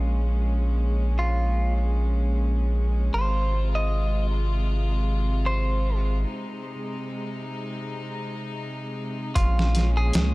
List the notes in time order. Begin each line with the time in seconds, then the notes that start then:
Already playing: A#1 A#2 G#3 C#4
1.19 F4
3.12 G#1 C3 F4 C5
3.75 D#5
5.46 C5
6.26 D#4
9.35 A#1 A#2 G#3 C#4 F4, kick, closed hi-hat
9.59 snare
9.75 snare, closed hi-hat
9.97 G#4
10.13 C#2, snare, closed hi-hat